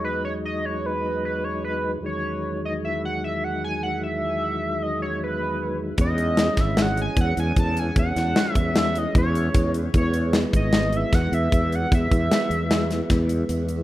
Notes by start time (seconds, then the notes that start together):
Already playing: E2 F#3 G#3 D#4
0.04 B4
0.25 C#5
0.45 D#5
0.65 C#5
0.86 B4
1.25 B4
1.44 C#5
1.64 B4
2.00 E2 D#3 F#3 G#3
2.06 C#5
2.65 D#5
2.85 E5
3.05 F#5
3.24 E5
3.44 F#5
3.64 G#5
3.83 F#5
4.03 E5
4.82 D#5
5.02 C#5
5.24 B4
5.97 E2 E3 G#3, kick, closed hi-hat
6.01 C#4 D#5
6.18 closed hi-hat
6.37 snare, closed hi-hat
6.57 G#1 E5, kick, snare, closed hi-hat
6.77 snare, closed hi-hat
6.82 F#5
6.97 closed hi-hat
7.01 G#5
7.17 E2, kick, closed hi-hat
7.21 F#5
7.37 E2 G#5, closed hi-hat
7.56 E2 A5, kick, closed hi-hat
7.77 G#5, closed hi-hat
7.96 E2 F#5, kick, closed hi-hat
8.16 E2, snare, closed hi-hat
8.36 snare, closed hi-hat
8.53 E2 E5, kick, closed hi-hat
8.76 E5, snare, closed hi-hat
8.95 D#5, closed hi-hat
9.15 E2 C#5, kick, closed hi-hat
9.35 closed hi-hat
9.54 E2, kick, closed hi-hat
9.74 closed hi-hat
9.93 E2 E3 G#3, kick, closed hi-hat
9.97 B3 C#5
10.14 closed hi-hat
10.33 snare, closed hi-hat
10.53 G#1 D#5, kick, closed hi-hat
10.73 snare, closed hi-hat
10.93 E5, closed hi-hat
11.13 E2 F#5, kick, snare, closed hi-hat
11.32 E2 E5, closed hi-hat
11.52 E2, kick, closed hi-hat
11.72 F#5, closed hi-hat
11.92 E2 E5, kick, closed hi-hat
12.11 E2, kick, closed hi-hat
12.31 snare, closed hi-hat
12.50 E2, closed hi-hat
12.71 snare, closed hi-hat
12.91 snare, closed hi-hat
13.10 E2, kick, snare, closed hi-hat
13.29 closed hi-hat
13.49 E2, closed hi-hat
13.69 closed hi-hat